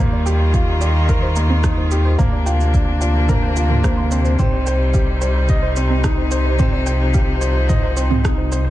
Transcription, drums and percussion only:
0.26 shaker medium
0.54 kick loud
0.54 shaker soft
0.81 shaker medium
1.09 kick medium
1.09 shaker soft
1.36 shaker medium
1.64 kick medium
1.64 cross-stick medium
1.64 shaker soft
1.91 shaker medium
2.19 kick loud
2.19 mid tom medium
2.19 shaker soft
2.47 shaker medium
2.60 shaker soft
2.74 kick loud
2.74 shaker soft
3.01 shaker medium
3.29 kick loud
3.29 mid tom medium
3.29 shaker soft
3.56 shaker medium
3.70 mid tom medium
3.84 kick loud
3.84 cross-stick medium
3.84 shaker soft
4.11 shaker medium
4.25 shaker soft
4.39 kick loud
4.39 mid tom medium
4.39 shaker soft
4.67 shaker medium
4.94 kick loud
4.94 shaker soft
5.22 shaker medium
5.49 kick loud
5.49 shaker soft
5.76 shaker medium
6.04 kick loud
6.04 cross-stick medium
6.04 shaker soft
6.31 shaker medium
6.59 kick loud
6.59 mid tom medium
6.59 shaker soft
6.86 shaker medium
7.14 kick loud
7.14 shaker soft
7.41 shaker medium
7.69 kick loud
7.69 mid tom medium
7.69 shaker soft
7.97 shaker medium
8.11 mid tom medium
8.25 kick loud
8.25 cross-stick medium
8.25 shaker soft
8.52 shaker medium

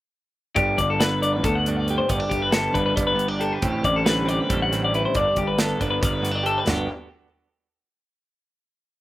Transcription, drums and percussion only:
0.56 kick medium
0.56 closed hi-hat medium
0.78 kick medium
0.78 closed hi-hat medium
1.00 snare medium
1.00 closed hi-hat medium
1.23 closed hi-hat medium
1.44 kick loud
1.44 closed hi-hat medium
1.66 closed hi-hat medium
1.88 closed hi-hat medium
2.09 kick loud
2.09 closed hi-hat medium
2.31 kick medium
2.31 closed hi-hat soft
2.52 snare medium
2.52 closed hi-hat medium
2.75 kick medium
2.75 closed hi-hat medium
2.97 kick loud
2.97 closed hi-hat medium
3.19 closed hi-hat medium
3.41 closed hi-hat soft
3.62 kick medium
3.62 closed hi-hat medium
3.84 kick medium
3.84 closed hi-hat soft
4.06 snare medium
4.06 closed hi-hat medium
4.29 closed hi-hat medium
4.50 kick medium
4.50 closed hi-hat medium
4.73 snare soft
4.73 closed hi-hat medium
4.94 closed hi-hat medium
5.15 kick medium
5.15 closed hi-hat medium
5.36 kick medium
5.36 closed hi-hat medium
5.58 snare medium
5.58 closed hi-hat medium
5.81 kick medium
5.81 closed hi-hat medium
6.03 kick loud
6.03 closed hi-hat medium
6.25 snare soft
6.25 closed hi-hat medium
6.46 closed hi-hat medium
6.67 snare medium
6.67 floor tom medium
6.67 crash medium

